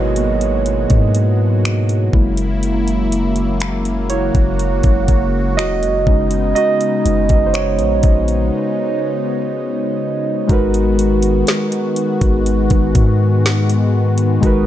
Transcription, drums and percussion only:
0.16 closed hi-hat
0.41 closed hi-hat
0.66 closed hi-hat
0.90 kick, closed hi-hat
1.15 closed hi-hat
1.65 finger snap, closed hi-hat
1.89 closed hi-hat
2.13 kick
2.37 closed hi-hat
2.63 closed hi-hat
2.88 closed hi-hat
3.12 closed hi-hat
3.36 closed hi-hat
3.60 finger snap, closed hi-hat
3.85 closed hi-hat
4.10 closed hi-hat
4.35 kick, closed hi-hat
4.59 closed hi-hat
4.83 kick, closed hi-hat
5.08 kick, closed hi-hat
5.59 finger snap, closed hi-hat
5.83 closed hi-hat
6.07 kick
6.31 closed hi-hat
6.56 closed hi-hat
6.81 closed hi-hat
7.06 closed hi-hat
7.29 kick, closed hi-hat
7.54 finger snap, closed hi-hat
7.79 closed hi-hat
8.03 kick, closed hi-hat
8.28 closed hi-hat
10.49 kick, closed hi-hat
10.74 closed hi-hat
10.99 closed hi-hat
11.22 closed hi-hat
11.47 snare, closed hi-hat
11.72 closed hi-hat
11.96 closed hi-hat
12.21 kick, closed hi-hat
12.46 closed hi-hat
12.70 kick, closed hi-hat
12.95 kick, closed hi-hat
13.46 snare, closed hi-hat
13.70 closed hi-hat
14.18 closed hi-hat
14.43 kick, closed hi-hat

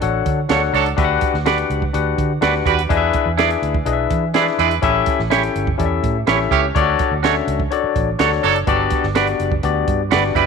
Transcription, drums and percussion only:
0.02 closed hi-hat
0.26 kick, closed hi-hat
0.49 snare, closed hi-hat
0.74 snare, open hi-hat
0.86 closed hi-hat
0.98 kick, closed hi-hat
1.21 kick, closed hi-hat
1.34 snare
1.46 snare, closed hi-hat
1.58 closed hi-hat
1.70 closed hi-hat
1.82 kick
1.94 closed hi-hat
2.18 kick, closed hi-hat
2.42 snare, closed hi-hat
2.55 snare
2.66 kick, snare, closed hi-hat
2.79 closed hi-hat
2.90 kick, closed hi-hat
3.13 kick, closed hi-hat
3.39 snare, closed hi-hat
3.51 closed hi-hat
3.63 closed hi-hat
3.75 kick
3.86 closed hi-hat
4.11 kick, closed hi-hat
4.34 snare, closed hi-hat
4.47 snare
4.59 snare, closed hi-hat
4.71 closed hi-hat
4.83 kick, closed hi-hat
5.06 kick, closed hi-hat
5.19 snare
5.31 snare, closed hi-hat
5.43 closed hi-hat
5.56 closed hi-hat
5.67 kick
5.80 kick, closed hi-hat
6.04 kick, closed hi-hat
6.27 snare, closed hi-hat
6.51 kick, snare, closed hi-hat
6.76 kick, closed hi-hat
6.99 kick, closed hi-hat
7.24 snare, closed hi-hat
7.48 closed hi-hat
7.60 kick
7.72 closed hi-hat
7.96 kick, closed hi-hat
8.19 snare, closed hi-hat
8.32 snare
8.44 snare, open hi-hat
8.56 closed hi-hat
8.67 kick, closed hi-hat
8.90 kick, closed hi-hat
9.03 snare
9.15 snare, closed hi-hat
9.27 closed hi-hat
9.40 closed hi-hat
9.52 kick
9.63 closed hi-hat
9.88 kick, closed hi-hat
10.11 snare, closed hi-hat
10.24 snare
10.35 kick, snare, closed hi-hat

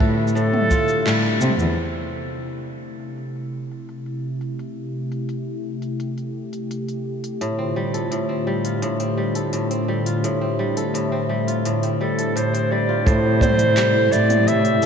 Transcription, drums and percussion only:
0.00 kick
0.28 shaker
0.37 shaker
0.53 mid tom
0.71 kick, shaker
0.88 shaker
1.07 clap, shaker
1.41 mid tom, shaker
1.59 shaker
2.30 open hi-hat
2.47 open hi-hat
3.00 open hi-hat
3.18 open hi-hat
3.36 open hi-hat
3.72 open hi-hat
3.89 open hi-hat
4.06 open hi-hat
4.41 open hi-hat
4.59 open hi-hat
5.12 open hi-hat
5.29 open hi-hat
5.82 open hi-hat
6.00 open hi-hat
6.18 open hi-hat
6.53 open hi-hat
6.71 open hi-hat
6.88 open hi-hat
7.24 open hi-hat
7.41 open hi-hat
7.94 open hi-hat
8.12 open hi-hat
8.65 open hi-hat
8.82 open hi-hat
9.00 open hi-hat
9.35 open hi-hat
9.53 open hi-hat
9.71 open hi-hat
10.06 open hi-hat
10.24 open hi-hat
10.77 open hi-hat
10.95 open hi-hat
11.48 open hi-hat
11.65 open hi-hat
11.83 open hi-hat
12.19 open hi-hat
12.37 open hi-hat
12.55 open hi-hat
13.07 kick, open hi-hat, shaker
13.41 kick, mid tom, shaker
13.59 open hi-hat, shaker
13.77 clap, open hi-hat, shaker
14.13 shaker
14.30 mid tom, open hi-hat, shaker
14.48 open hi-hat, shaker
14.65 open hi-hat
14.83 shaker

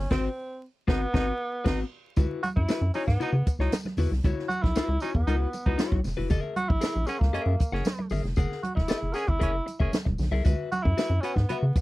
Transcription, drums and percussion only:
0.10 kick, snare, crash
0.88 kick, snare
1.14 kick, snare
1.66 kick, snare, crash
2.16 kick, closed hi-hat, tambourine, muted conga, low conga
2.43 closed hi-hat, tambourine, high conga
2.57 kick
2.69 snare, closed hi-hat, tambourine, muted conga
2.94 open hi-hat, tambourine
3.08 kick, snare
3.21 closed hi-hat, tambourine
3.47 kick, closed hi-hat, tambourine, muted conga
3.60 snare
3.72 snare, closed hi-hat, tambourine, muted conga, high conga
3.85 snare, high conga
3.97 open hi-hat, tambourine, muted conga, low conga
4.13 snare
4.24 kick, closed hi-hat, tambourine, low conga
4.39 snare
4.49 closed hi-hat, tambourine, muted conga, high conga
4.64 kick, snare
4.76 snare, closed hi-hat, tambourine, muted conga
5.00 closed hi-hat, tambourine, muted conga
5.15 kick
5.27 closed hi-hat, tambourine
5.53 closed hi-hat, tambourine, muted conga
5.66 kick
5.79 snare, closed hi-hat, tambourine, high conga
5.92 kick, high conga
6.04 snare, open hi-hat, tambourine, muted conga, low conga
6.30 kick, closed hi-hat, tambourine, muted conga, low conga
6.56 closed hi-hat, muted conga, high conga
6.70 kick
6.81 snare, closed hi-hat, tambourine
7.07 closed hi-hat, tambourine, muted conga
7.21 kick, snare
7.34 closed hi-hat
7.60 kick, closed hi-hat, tambourine, muted conga
7.75 snare
7.85 snare, closed hi-hat, tambourine, muted conga, high conga
7.99 high conga
8.10 open hi-hat, tambourine, low conga
8.26 snare
8.36 kick, closed hi-hat, tambourine, low conga
8.52 snare
8.63 closed hi-hat, muted conga, high conga
8.77 kick, snare
8.88 snare, closed hi-hat, tambourine
9.14 snare, closed hi-hat, tambourine
9.28 kick
9.41 kick, closed hi-hat, muted conga
9.68 closed hi-hat, tambourine, muted conga
9.80 kick
9.93 snare, closed hi-hat, tambourine, muted conga, high conga
10.06 kick, high conga
10.18 snare, open hi-hat, tambourine, muted conga, low conga
10.45 kick, closed hi-hat, tambourine, muted conga, low conga
10.72 closed hi-hat, tambourine, muted conga, high conga
10.85 kick
10.98 snare, closed hi-hat, tambourine, muted conga
11.23 closed hi-hat, tambourine
11.36 kick, snare
11.49 closed hi-hat, tambourine, muted conga
11.75 kick, closed hi-hat, tambourine, muted conga

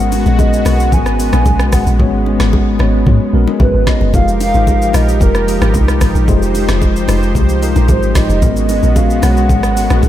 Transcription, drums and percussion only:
0.00 shaker
0.12 open hi-hat, low bongo, shaker
0.26 high bongo, shaker
0.39 kick, high bongo, shaker
0.53 shaker
0.65 cross-stick, open hi-hat, low bongo, shaker
0.80 shaker
0.92 kick, low conga, shaker
1.06 cross-stick, shaker
1.20 open hi-hat, shaker
1.33 cross-stick, low bongo, shaker
1.45 kick, high bongo, low conga, shaker
1.59 cross-stick, shaker
1.72 kick, cross-stick, open hi-hat, shaker
1.87 high bongo, shaker
2.00 kick, low conga
2.26 low bongo
2.40 cross-stick, snare, high bongo
2.53 kick, high bongo
2.79 cross-stick, low bongo
3.06 kick, low conga
3.47 low bongo
3.60 kick, high bongo, low conga
3.87 kick, cross-stick, snare
4.01 high bongo
4.14 kick, low conga, shaker
4.28 shaker
4.40 open hi-hat, low bongo, shaker
4.54 high bongo, shaker
4.67 kick, high bongo, shaker
4.82 shaker
4.93 cross-stick, open hi-hat, low bongo, shaker
5.09 shaker
5.20 kick, low conga, shaker
5.35 cross-stick, shaker
5.48 open hi-hat, shaker
5.62 cross-stick, low bongo, shaker
5.74 kick, high bongo, low conga, shaker
5.88 cross-stick, shaker
6.01 kick, cross-stick, open hi-hat, shaker
6.15 high bongo, shaker
6.28 kick, low conga, shaker
6.42 shaker
6.55 open hi-hat, low bongo, shaker
6.69 cross-stick, snare, high bongo, shaker
6.81 kick, high bongo, shaker
6.96 shaker
7.08 cross-stick, open hi-hat, low bongo, shaker
7.23 shaker
7.35 kick, low conga, shaker
7.49 shaker
7.63 open hi-hat, shaker
7.76 low bongo, shaker
7.88 kick, high bongo, low conga, shaker
8.03 shaker
8.15 kick, cross-stick, snare, open hi-hat, shaker
8.30 high bongo, shaker
8.42 kick, low conga, shaker
8.56 shaker
8.69 open hi-hat, low bongo, shaker
8.83 high bongo, shaker
8.96 kick, high bongo, shaker
9.10 shaker
9.22 cross-stick, open hi-hat, low bongo, shaker
9.37 shaker
9.49 kick, low conga, shaker
9.63 cross-stick, shaker
9.77 open hi-hat, shaker
9.90 cross-stick, low bongo, shaker
10.03 kick, high bongo, low conga, shaker

